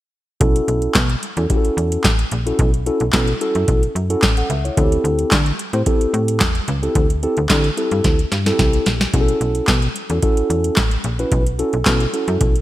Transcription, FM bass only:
0.41 B1
0.68 B1
0.95 B2
1.37 E2
1.77 E2
2.05 A1
2.32 A#1
2.59 B1
3.01 B1
3.14 B2
3.55 F#2
3.68 B1
3.95 F#2
4.23 A1
4.50 C#2
4.77 D2
5.04 D2
5.32 D3
5.73 A2
6.14 A2
6.41 E2
6.68 C#2
6.96 D2
7.38 D2
7.50 D3
7.92 G2
8.05 D2
8.32 G2
8.59 C2
8.87 A#1
9.14 B1
9.41 B1
9.68 B2
10.10 E2
10.50 E2
10.77 A1
11.04 A#1
11.32 B1
11.74 B1
11.86 B2
12.28 F#2
12.41 B1

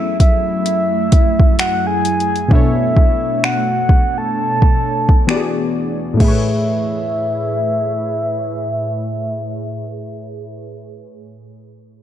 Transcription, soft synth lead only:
Already playing: E5
0.21 E5
1.60 F#5
1.87 G#5
2.53 E5
3.45 F#5
4.18 A5
6.21 E5

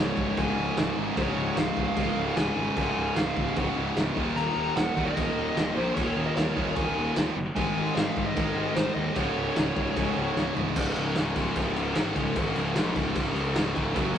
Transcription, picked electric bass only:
0.17 C#1
0.37 C#1
0.58 C#1
0.77 C#1
0.97 G#1
1.17 C#1
1.36 C#1
1.57 C#1
1.77 C#1
1.97 C#1
2.17 C#1
2.37 C#1
2.57 G#1
2.77 C#1
2.97 C#1
3.17 C#1
3.37 C#1
3.57 C#1
3.77 C#1
3.96 C#1
4.17 D#1
4.36 D#1
4.56 D#1
4.77 D#1
4.97 D#1
5.17 D#1
5.37 D#1
5.58 D#1
5.77 A#1
5.97 D#1
6.17 D#1
6.37 D#1
6.57 D#1
6.77 D#1
6.96 D#1
7.16 D#1
7.37 F#1
7.57 G#1
7.77 G#1
7.96 G#1
8.17 G#1
8.37 G#1
8.56 G#1
8.76 G#1
8.96 D#2
9.16 C#1
9.36 C#1
9.57 C#1
9.77 C#1
9.97 C#1
10.16 C#1
10.37 C#1
10.57 G#1
10.76 C#1
10.97 C#1
11.16 C#1
11.36 C#1
11.56 C#1
11.76 C#1
11.96 G#1
12.16 C#1
12.36 G#1
12.56 C#1
12.76 A#1
12.96 C#1
13.16 C#1
13.36 C#2
13.56 C#1
13.76 C#1
13.96 F#1

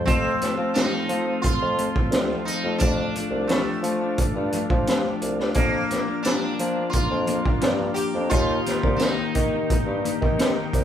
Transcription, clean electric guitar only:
0.05 F3 A3 C4 F4
0.40 F3 A3 C4 F4
0.57 A3 C4 F4
0.76 F3 A3 C4 F4
1.09 F3 A3 C4 F4
1.26 A3 C4 F4
1.62 A3 C4 F4
1.77 F3 A3 C4 F4
1.95 A3 C4 F4
2.14 F3 A3 C4 F4
2.30 A3 C4 F4
2.64 A3 C4 F4
2.81 F3 A3 D4 F4
3.16 F3 A3 D4 F4
3.32 A3 D4 F4
3.49 F3 A3 D4 F4
3.85 F3 A3 D4 F4
4.01 A3 D4 F4
4.37 A3 D4 F4
4.53 F3 A3 D4 F4
4.71 A3 D4 F4
4.89 F3 A3 D4 F4
5.05 A3 D4 F4
5.40 A3 D4 F4
5.57 F3 A#3 D4 F4
5.91 F3 A#3 D4 F4
6.08 A#3 D4 F4
6.25 F3 A#3 D4 F4
6.59 F3 A#3 D4 F4
6.76 A#3 D4 F4
7.09 A#3 D4 F4
7.26 F3 A#3 D4 F4
7.42 A#3 D4 F4
7.61 F3 A#3 D4 F4
7.80 A#3 D4 F4
8.14 A#3 D4 F4
8.31 D#3 A#3 D#4 G4
8.66 D#3 A#3 D#4 G4
8.83 A#3 D#4 G4
9.01 D#3 A#3 D#4 G4
9.35 D#3 A#3 D#4 G4
9.54 A#3 D#4 G4
9.87 A#3 D#4 G4
10.04 D#3 A#3 D#4 G4
10.21 A#3 D#4 G4
10.37 D#3 A#3 D#4 G4
10.56 A#3 D#4 G4

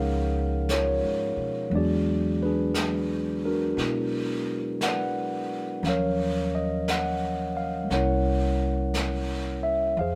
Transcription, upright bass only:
Already playing: C#2
1.03 G#2
1.36 B2
1.71 E2
3.77 B2
5.83 D#2
7.90 C2
9.97 F2

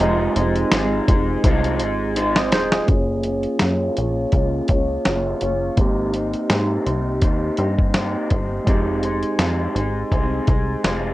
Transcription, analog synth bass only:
0.00 F1
0.36 F1
0.73 G#1
1.09 F1
1.44 C2
1.81 G#1
2.52 D#1
2.89 F#1
3.61 F#2
3.98 A#1
4.32 C#2
4.69 C#2
5.06 F#1
5.42 F#1
5.77 G#1
6.50 G#2
6.86 C2
7.22 D#2
7.58 G2
8.31 G1
8.67 F1
9.39 F2
9.75 G#1
10.12 C2
10.48 C2
10.85 F1

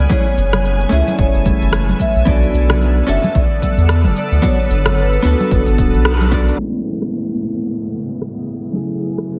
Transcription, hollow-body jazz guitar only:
0.10 A3 C#4 E4 G#4
0.89 A3 C#4 E4
0.93 G#4
2.25 B3 D4 F#4 A4
3.07 C#4 D4 F#4 A4
4.42 B3 D4 F#4 A4
5.22 B3 D4 F#4
5.27 A4
6.31 B3 D4 F#4 D5
6.57 A2 G#3 B3 C#4
6.61 E4
8.72 F#2 A3 E4
8.77 G#4

